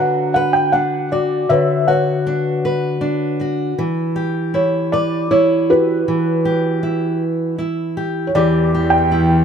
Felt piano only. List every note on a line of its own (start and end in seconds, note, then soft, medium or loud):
0.00 0.32 B4 medium
0.00 0.32 C#5 medium
0.00 0.33 F#5 medium
0.34 0.52 F#5 medium
0.53 0.71 G5 medium
0.72 1.08 F#5 medium
1.12 1.47 D5 medium
1.49 1.87 B4 medium
1.49 1.87 C#5 medium
1.49 1.89 E5 medium
1.88 3.36 B4 soft
1.88 3.36 C#5 soft
1.88 3.36 F#5 medium
4.55 4.94 C#5 medium
4.92 5.31 D5 medium
5.31 5.70 C#5 medium
5.70 7.56 F#4 soft
5.70 7.55 G4 soft
5.70 7.56 B4 medium
8.27 8.35 C#5 soft
8.35 9.45 G4 medium
8.35 8.94 D5 medium
8.90 9.45 G5 medium